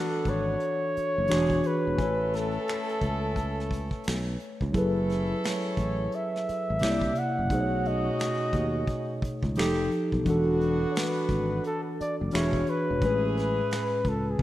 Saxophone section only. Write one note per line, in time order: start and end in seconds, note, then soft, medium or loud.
0.00 0.91 B3 medium
0.00 0.91 D4 medium
0.00 0.91 F#4 medium
1.29 1.63 G#3 medium
1.29 1.63 D4 medium
1.29 1.63 G#4 medium
1.99 4.36 C#4 medium
1.99 4.36 E4 medium
1.99 4.36 A4 medium
4.74 6.43 C#4 medium
4.74 6.43 E4 medium
4.74 6.43 A4 medium
6.81 7.15 D4 medium
6.81 7.15 E4 medium
6.81 7.15 G4 medium
7.50 9.19 C#4 medium
7.50 9.19 D#4 medium
7.50 9.19 F#4 medium
9.57 9.91 C4 medium
9.57 9.91 D#4 medium
9.57 9.91 G4 medium
10.26 11.95 B3 medium
10.26 11.95 D4 medium
10.26 11.95 F#4 medium
12.33 12.67 B3 medium
12.33 12.67 C#4 medium
12.33 12.67 E4 medium
13.02 14.03 C#4 medium
13.02 14.03 E4 medium
13.02 14.03 G#4 medium